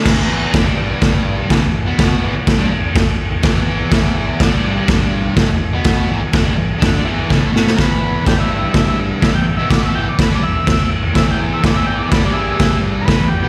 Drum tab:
CC |x---x---x---x---|x---x---x---x---|x---x---x---x---|x---x---x-------|
SD |o---o---o---o---|o---o---o---o---|o---o---o---o---|o---o---o---o-oo|
BD |o---o---o---o---|o---o---o---o---|o---o---o---o---|o---o---o---o---|

CC |x---x---x---x---|x---x---x---x---|x---x---x---x---|
SD |o---o---o---o---|o---o---o---o---|o---o---o---o---|
BD |o---o---o---o---|o---o---o---o---|o---o---o---o---|